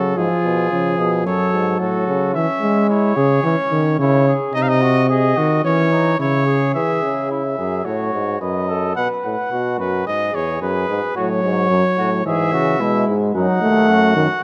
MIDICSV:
0, 0, Header, 1, 5, 480
1, 0, Start_track
1, 0, Tempo, 548446
1, 144, Time_signature, 4, 2, 24, 8
1, 12634, End_track
2, 0, Start_track
2, 0, Title_t, "Trumpet"
2, 0, Program_c, 0, 56
2, 0, Note_on_c, 0, 69, 70
2, 150, Note_on_c, 0, 68, 77
2, 163, Note_off_c, 0, 69, 0
2, 1103, Note_off_c, 0, 68, 0
2, 1108, Note_on_c, 0, 73, 73
2, 1572, Note_off_c, 0, 73, 0
2, 1578, Note_on_c, 0, 69, 64
2, 2045, Note_off_c, 0, 69, 0
2, 2055, Note_on_c, 0, 76, 79
2, 2525, Note_off_c, 0, 76, 0
2, 2539, Note_on_c, 0, 73, 73
2, 3480, Note_off_c, 0, 73, 0
2, 3498, Note_on_c, 0, 73, 73
2, 3804, Note_off_c, 0, 73, 0
2, 3975, Note_on_c, 0, 75, 87
2, 4048, Note_on_c, 0, 77, 70
2, 4061, Note_off_c, 0, 75, 0
2, 4103, Note_on_c, 0, 75, 79
2, 4116, Note_off_c, 0, 77, 0
2, 4449, Note_off_c, 0, 75, 0
2, 4454, Note_on_c, 0, 75, 72
2, 4929, Note_off_c, 0, 75, 0
2, 4945, Note_on_c, 0, 73, 78
2, 5418, Note_off_c, 0, 73, 0
2, 5428, Note_on_c, 0, 73, 78
2, 5897, Note_off_c, 0, 73, 0
2, 5902, Note_on_c, 0, 76, 70
2, 6356, Note_off_c, 0, 76, 0
2, 6400, Note_on_c, 0, 76, 54
2, 6873, Note_on_c, 0, 73, 60
2, 6886, Note_off_c, 0, 76, 0
2, 7357, Note_off_c, 0, 73, 0
2, 7365, Note_on_c, 0, 75, 60
2, 7835, Note_off_c, 0, 75, 0
2, 7840, Note_on_c, 0, 78, 77
2, 7949, Note_off_c, 0, 78, 0
2, 8088, Note_on_c, 0, 78, 63
2, 8558, Note_off_c, 0, 78, 0
2, 8576, Note_on_c, 0, 71, 61
2, 8806, Note_off_c, 0, 71, 0
2, 8813, Note_on_c, 0, 75, 75
2, 9057, Note_on_c, 0, 73, 67
2, 9070, Note_off_c, 0, 75, 0
2, 9291, Note_off_c, 0, 73, 0
2, 9296, Note_on_c, 0, 71, 68
2, 9762, Note_off_c, 0, 71, 0
2, 9774, Note_on_c, 0, 73, 81
2, 10710, Note_off_c, 0, 73, 0
2, 10737, Note_on_c, 0, 76, 77
2, 11427, Note_off_c, 0, 76, 0
2, 11684, Note_on_c, 0, 78, 85
2, 12634, Note_off_c, 0, 78, 0
2, 12634, End_track
3, 0, Start_track
3, 0, Title_t, "Flugelhorn"
3, 0, Program_c, 1, 56
3, 0, Note_on_c, 1, 66, 66
3, 135, Note_off_c, 1, 66, 0
3, 151, Note_on_c, 1, 65, 78
3, 850, Note_off_c, 1, 65, 0
3, 863, Note_on_c, 1, 68, 72
3, 970, Note_off_c, 1, 68, 0
3, 1103, Note_on_c, 1, 69, 75
3, 1569, Note_off_c, 1, 69, 0
3, 1578, Note_on_c, 1, 66, 66
3, 2052, Note_on_c, 1, 61, 74
3, 2065, Note_off_c, 1, 66, 0
3, 2530, Note_off_c, 1, 61, 0
3, 2536, Note_on_c, 1, 64, 73
3, 2769, Note_on_c, 1, 68, 71
3, 2782, Note_off_c, 1, 64, 0
3, 3018, Note_on_c, 1, 61, 63
3, 3031, Note_off_c, 1, 68, 0
3, 3491, Note_off_c, 1, 61, 0
3, 3496, Note_on_c, 1, 64, 66
3, 3733, Note_off_c, 1, 64, 0
3, 3741, Note_on_c, 1, 68, 71
3, 3972, Note_off_c, 1, 68, 0
3, 3977, Note_on_c, 1, 63, 75
3, 4216, Note_on_c, 1, 66, 68
3, 4229, Note_off_c, 1, 63, 0
3, 4452, Note_off_c, 1, 66, 0
3, 4457, Note_on_c, 1, 68, 79
3, 4699, Note_on_c, 1, 66, 72
3, 4712, Note_off_c, 1, 68, 0
3, 4931, Note_off_c, 1, 66, 0
3, 4936, Note_on_c, 1, 61, 65
3, 5176, Note_off_c, 1, 61, 0
3, 5182, Note_on_c, 1, 63, 64
3, 5409, Note_off_c, 1, 63, 0
3, 5414, Note_on_c, 1, 64, 58
3, 5649, Note_off_c, 1, 64, 0
3, 5654, Note_on_c, 1, 68, 63
3, 5896, Note_off_c, 1, 68, 0
3, 5901, Note_on_c, 1, 68, 64
3, 6355, Note_off_c, 1, 68, 0
3, 6390, Note_on_c, 1, 64, 54
3, 6499, Note_off_c, 1, 64, 0
3, 6631, Note_on_c, 1, 68, 54
3, 6862, Note_off_c, 1, 68, 0
3, 6868, Note_on_c, 1, 66, 59
3, 7345, Note_off_c, 1, 66, 0
3, 7357, Note_on_c, 1, 71, 53
3, 7601, Note_on_c, 1, 69, 58
3, 7614, Note_off_c, 1, 71, 0
3, 7837, Note_off_c, 1, 69, 0
3, 7842, Note_on_c, 1, 71, 68
3, 8315, Note_off_c, 1, 71, 0
3, 8330, Note_on_c, 1, 66, 60
3, 8806, Note_on_c, 1, 68, 59
3, 8819, Note_off_c, 1, 66, 0
3, 9278, Note_off_c, 1, 68, 0
3, 9284, Note_on_c, 1, 68, 54
3, 9755, Note_off_c, 1, 68, 0
3, 9765, Note_on_c, 1, 66, 72
3, 9873, Note_off_c, 1, 66, 0
3, 10013, Note_on_c, 1, 73, 75
3, 10479, Note_off_c, 1, 73, 0
3, 10488, Note_on_c, 1, 66, 72
3, 10595, Note_off_c, 1, 66, 0
3, 10731, Note_on_c, 1, 68, 77
3, 10962, Note_off_c, 1, 68, 0
3, 10968, Note_on_c, 1, 66, 74
3, 11206, Note_on_c, 1, 64, 65
3, 11219, Note_off_c, 1, 66, 0
3, 11513, Note_off_c, 1, 64, 0
3, 11682, Note_on_c, 1, 63, 74
3, 12123, Note_off_c, 1, 63, 0
3, 12158, Note_on_c, 1, 66, 73
3, 12622, Note_off_c, 1, 66, 0
3, 12634, End_track
4, 0, Start_track
4, 0, Title_t, "Trombone"
4, 0, Program_c, 2, 57
4, 0, Note_on_c, 2, 54, 72
4, 149, Note_on_c, 2, 53, 64
4, 162, Note_off_c, 2, 54, 0
4, 623, Note_off_c, 2, 53, 0
4, 628, Note_on_c, 2, 53, 63
4, 1105, Note_on_c, 2, 54, 67
4, 1118, Note_off_c, 2, 53, 0
4, 2052, Note_off_c, 2, 54, 0
4, 2058, Note_on_c, 2, 52, 62
4, 2165, Note_off_c, 2, 52, 0
4, 2296, Note_on_c, 2, 56, 84
4, 2767, Note_off_c, 2, 56, 0
4, 2771, Note_on_c, 2, 49, 82
4, 3005, Note_off_c, 2, 49, 0
4, 3010, Note_on_c, 2, 52, 79
4, 3120, Note_off_c, 2, 52, 0
4, 3252, Note_on_c, 2, 51, 83
4, 3488, Note_off_c, 2, 51, 0
4, 3493, Note_on_c, 2, 49, 94
4, 3802, Note_off_c, 2, 49, 0
4, 3974, Note_on_c, 2, 48, 91
4, 4662, Note_off_c, 2, 48, 0
4, 4705, Note_on_c, 2, 51, 83
4, 4933, Note_off_c, 2, 51, 0
4, 4939, Note_on_c, 2, 52, 91
4, 5415, Note_off_c, 2, 52, 0
4, 5423, Note_on_c, 2, 49, 86
4, 5898, Note_off_c, 2, 49, 0
4, 9763, Note_on_c, 2, 54, 78
4, 10688, Note_off_c, 2, 54, 0
4, 10728, Note_on_c, 2, 52, 66
4, 11194, Note_off_c, 2, 52, 0
4, 11202, Note_on_c, 2, 56, 70
4, 11668, Note_off_c, 2, 56, 0
4, 11685, Note_on_c, 2, 54, 85
4, 11911, Note_off_c, 2, 54, 0
4, 11916, Note_on_c, 2, 57, 89
4, 12382, Note_off_c, 2, 57, 0
4, 12393, Note_on_c, 2, 51, 80
4, 12499, Note_off_c, 2, 51, 0
4, 12634, End_track
5, 0, Start_track
5, 0, Title_t, "Euphonium"
5, 0, Program_c, 3, 58
5, 0, Note_on_c, 3, 49, 72
5, 139, Note_off_c, 3, 49, 0
5, 144, Note_on_c, 3, 44, 64
5, 251, Note_off_c, 3, 44, 0
5, 381, Note_on_c, 3, 47, 61
5, 616, Note_off_c, 3, 47, 0
5, 622, Note_on_c, 3, 49, 65
5, 854, Note_off_c, 3, 49, 0
5, 859, Note_on_c, 3, 47, 64
5, 1100, Note_on_c, 3, 42, 60
5, 1113, Note_off_c, 3, 47, 0
5, 1339, Note_off_c, 3, 42, 0
5, 1343, Note_on_c, 3, 44, 67
5, 1571, Note_off_c, 3, 44, 0
5, 1576, Note_on_c, 3, 45, 64
5, 1810, Note_off_c, 3, 45, 0
5, 1816, Note_on_c, 3, 49, 73
5, 2050, Note_off_c, 3, 49, 0
5, 5905, Note_on_c, 3, 52, 67
5, 6132, Note_off_c, 3, 52, 0
5, 6150, Note_on_c, 3, 49, 64
5, 6624, Note_off_c, 3, 49, 0
5, 6639, Note_on_c, 3, 42, 63
5, 6868, Note_off_c, 3, 42, 0
5, 6873, Note_on_c, 3, 45, 65
5, 7111, Note_off_c, 3, 45, 0
5, 7118, Note_on_c, 3, 44, 67
5, 7354, Note_off_c, 3, 44, 0
5, 7360, Note_on_c, 3, 42, 66
5, 7832, Note_off_c, 3, 42, 0
5, 7845, Note_on_c, 3, 47, 61
5, 7953, Note_off_c, 3, 47, 0
5, 8089, Note_on_c, 3, 45, 61
5, 8196, Note_off_c, 3, 45, 0
5, 8333, Note_on_c, 3, 47, 62
5, 8568, Note_on_c, 3, 42, 61
5, 8582, Note_off_c, 3, 47, 0
5, 8803, Note_off_c, 3, 42, 0
5, 8808, Note_on_c, 3, 44, 54
5, 9042, Note_off_c, 3, 44, 0
5, 9049, Note_on_c, 3, 40, 53
5, 9283, Note_off_c, 3, 40, 0
5, 9288, Note_on_c, 3, 42, 63
5, 9522, Note_off_c, 3, 42, 0
5, 9527, Note_on_c, 3, 44, 67
5, 9635, Note_off_c, 3, 44, 0
5, 9774, Note_on_c, 3, 45, 67
5, 10003, Note_off_c, 3, 45, 0
5, 10008, Note_on_c, 3, 44, 66
5, 10241, Note_off_c, 3, 44, 0
5, 10246, Note_on_c, 3, 42, 61
5, 10353, Note_off_c, 3, 42, 0
5, 10491, Note_on_c, 3, 45, 68
5, 10723, Note_off_c, 3, 45, 0
5, 10728, Note_on_c, 3, 44, 64
5, 10965, Note_on_c, 3, 49, 68
5, 10978, Note_off_c, 3, 44, 0
5, 11204, Note_on_c, 3, 47, 70
5, 11217, Note_off_c, 3, 49, 0
5, 11441, Note_off_c, 3, 47, 0
5, 11446, Note_on_c, 3, 44, 74
5, 11674, Note_off_c, 3, 44, 0
5, 11679, Note_on_c, 3, 42, 77
5, 11786, Note_off_c, 3, 42, 0
5, 11918, Note_on_c, 3, 39, 69
5, 12155, Note_on_c, 3, 42, 77
5, 12168, Note_off_c, 3, 39, 0
5, 12392, Note_off_c, 3, 42, 0
5, 12398, Note_on_c, 3, 42, 75
5, 12504, Note_off_c, 3, 42, 0
5, 12634, End_track
0, 0, End_of_file